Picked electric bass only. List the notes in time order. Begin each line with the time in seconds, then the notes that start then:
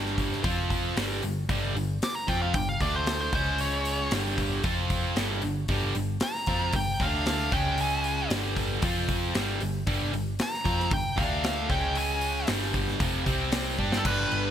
Already playing: G1
0.44 F2
0.97 G1
1.24 G1
1.49 G1
1.75 G1
2.28 F2
2.54 G1
2.81 D2
3.33 C#2
4.12 G1
4.64 F2
5.17 G1
5.43 G1
5.69 G1
5.95 G1
6.47 F2
6.74 G1
7.00 D2
7.52 C#2
8.30 G1
8.83 F2
9.35 G1
9.62 G1
9.87 G1
10.13 G1
10.65 F2
10.91 G1
11.18 D2
11.70 C#2
12.49 G1
13.00 F1
13.27 C2
13.79 G2
14.05 G1
14.32 G1